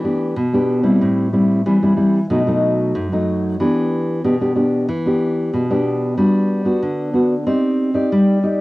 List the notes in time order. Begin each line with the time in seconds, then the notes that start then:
Already playing: E3
0.04 B3 D4 G4
0.36 B2
0.53 B3 D4 G4
0.83 G3 C4 E4
1.01 A2
1.33 G3 C4 E4
1.66 E3 G3 C4 E4
1.83 G3 C4 E4
1.97 G3 C4 E4
2.30 B2 F#3 A3 D#4
2.47 F#3 A3 D#4
2.95 F#2
3.12 F#3 A3 D#4
3.60 E3 B3 D4 G4
4.24 B2 B3 D4 G4
4.41 B3 D4 G4
4.55 B3 D4 G4
4.89 E3
5.06 B3 D4 G4
5.54 B2
5.70 B3 D4 G4
6.17 G3 B3 D4 F#4
6.65 B3 D4 F#4
6.82 D3
7.13 B3 D4 F#4
7.46 C4 D#4 G4 D5
7.94 D#4 G4 D5
8.12 G3
8.43 D#4 G4 D5